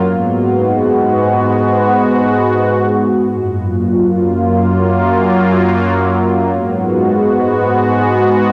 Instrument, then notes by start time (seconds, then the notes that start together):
analog synth pad
0.08 G#2 G#3 B3 F#4
3.30 F#2 F#3 A#3 F4
6.52 G#2 G#3 B3 F#4